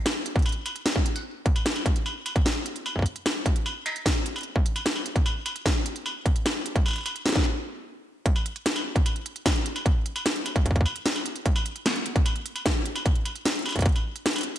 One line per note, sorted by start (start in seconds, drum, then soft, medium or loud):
0.06 snare loud
0.06 struck metal medium
0.26 closed hi-hat medium
0.36 kick loud
0.36 closed hi-hat soft
0.39 closed hi-hat soft
0.42 closed hi-hat soft
0.46 closed hi-hat soft
0.46 struck metal medium
0.49 closed hi-hat soft
0.52 closed hi-hat soft
0.66 closed hi-hat medium
0.66 struck metal medium
0.76 closed hi-hat medium
0.86 snare loud
0.96 kick loud
1.06 closed hi-hat medium
1.16 closed hi-hat medium
1.16 struck metal soft
1.46 kick loud
1.46 closed hi-hat medium
1.56 closed hi-hat medium
1.56 struck metal medium
1.66 snare loud
1.76 closed hi-hat soft
1.76 struck metal medium
1.86 kick loud
1.86 closed hi-hat medium
1.96 closed hi-hat medium
2.06 struck metal medium
2.26 closed hi-hat medium
2.26 struck metal medium
2.36 kick loud
2.36 closed hi-hat medium
2.46 snare loud
2.66 closed hi-hat medium
2.76 closed hi-hat soft
2.86 struck metal medium
2.96 kick soft
2.99 kick medium
3.02 kick medium
3.02 closed hi-hat medium
3.16 closed hi-hat medium
3.26 snare loud
3.26 struck metal soft
3.46 kick loud
3.46 closed hi-hat medium
3.56 closed hi-hat medium
3.66 struck metal medium
3.86 closed hi-hat medium
3.86 struck metal medium
3.96 closed hi-hat soft
4.06 kick medium
4.06 snare loud
4.26 closed hi-hat medium
4.36 closed hi-hat soft
4.36 struck metal soft
4.38 closed hi-hat soft
4.41 closed hi-hat soft
4.43 closed hi-hat soft
4.56 kick loud
4.66 closed hi-hat medium
4.76 closed hi-hat medium
4.76 struck metal medium
4.86 snare loud
4.96 struck metal medium
5.06 closed hi-hat medium
5.16 kick loud
5.16 closed hi-hat medium
5.26 struck metal medium
5.46 closed hi-hat medium
5.46 struck metal medium
5.56 closed hi-hat medium
5.66 kick loud
5.66 snare loud
5.86 closed hi-hat medium
5.96 closed hi-hat medium
6.06 struck metal medium
6.26 kick loud
6.26 closed hi-hat medium
6.36 closed hi-hat medium
6.46 snare loud
6.46 struck metal medium
6.66 closed hi-hat medium
6.76 kick loud
6.76 closed hi-hat medium
6.86 struck metal medium
6.88 struck metal medium
6.91 struck metal medium
6.93 closed hi-hat soft
6.93 struck metal soft
6.96 struck metal soft
6.98 struck metal soft
7.01 struck metal soft
7.03 closed hi-hat medium
7.03 struck metal soft
7.06 struck metal medium
7.16 closed hi-hat soft
7.26 snare loud
7.29 snare medium
7.32 kick loud
7.32 snare medium
7.36 snare medium
7.36 closed hi-hat soft
7.39 snare soft
7.42 snare soft
8.26 kick loud
8.26 closed hi-hat medium
8.36 struck metal medium
8.46 closed hi-hat medium
8.56 closed hi-hat medium
8.66 snare loud
8.66 closed hi-hat medium
8.76 closed hi-hat soft
8.76 struck metal medium
8.96 kick loud
8.96 closed hi-hat medium
9.06 closed hi-hat medium
9.06 struck metal medium
9.16 closed hi-hat soft
9.26 closed hi-hat medium
9.36 closed hi-hat medium
9.46 kick loud
9.46 snare loud
9.46 closed hi-hat medium
9.46 struck metal medium
9.56 closed hi-hat soft
9.66 closed hi-hat medium
9.76 closed hi-hat medium
9.76 struck metal medium
9.86 kick loud
9.86 closed hi-hat medium
10.06 closed hi-hat medium
10.16 closed hi-hat medium
10.16 struck metal medium
10.26 snare loud
10.26 closed hi-hat medium
10.36 closed hi-hat soft
10.46 closed hi-hat medium
10.46 struck metal medium
10.56 kick loud
10.56 closed hi-hat medium
10.66 kick medium
10.66 closed hi-hat medium
10.71 kick medium
10.76 kick medium
10.76 closed hi-hat soft
10.81 kick loud
10.86 struck metal medium
10.96 closed hi-hat medium
11.06 snare loud
11.06 closed hi-hat medium
11.16 closed hi-hat soft
11.16 struck metal medium
11.26 closed hi-hat medium
11.36 closed hi-hat medium
11.46 kick loud
11.46 closed hi-hat medium
11.56 struck metal medium
11.66 closed hi-hat medium
11.76 closed hi-hat medium
11.86 snare loud
11.86 closed hi-hat medium
11.86 struck metal soft
11.96 closed hi-hat soft
12.06 closed hi-hat medium
12.16 kick loud
12.16 closed hi-hat medium
12.26 closed hi-hat medium
12.26 struck metal medium
12.36 closed hi-hat soft
12.46 closed hi-hat medium
12.56 closed hi-hat medium
12.56 struck metal medium
12.66 kick loud
12.66 snare loud
12.66 closed hi-hat medium
12.86 closed hi-hat medium
12.96 closed hi-hat medium
12.96 struck metal medium
13.06 kick loud
13.06 closed hi-hat medium
13.15 closed hi-hat soft
13.25 closed hi-hat medium
13.25 struck metal soft
13.35 closed hi-hat soft
13.45 snare loud
13.45 closed hi-hat medium
13.56 closed hi-hat soft
13.59 closed hi-hat soft
13.62 closed hi-hat soft
13.66 closed hi-hat soft
13.66 struck metal medium
13.69 closed hi-hat soft
13.69 struck metal medium
13.71 closed hi-hat soft
13.72 closed hi-hat soft
13.72 struck metal soft
13.76 kick medium
13.76 closed hi-hat medium
13.79 kick medium
13.79 closed hi-hat soft
13.81 closed hi-hat medium
13.82 kick loud
13.82 closed hi-hat soft
13.86 kick loud
13.86 closed hi-hat medium
13.89 closed hi-hat soft
13.92 closed hi-hat soft
13.96 closed hi-hat soft
13.96 struck metal soft
14.16 closed hi-hat medium
14.26 snare loud
14.26 closed hi-hat soft
14.28 closed hi-hat soft
14.31 closed hi-hat soft
14.33 closed hi-hat soft
14.36 closed hi-hat medium
14.36 struck metal medium
14.38 closed hi-hat medium
14.41 closed hi-hat medium
14.43 closed hi-hat medium
14.56 closed hi-hat medium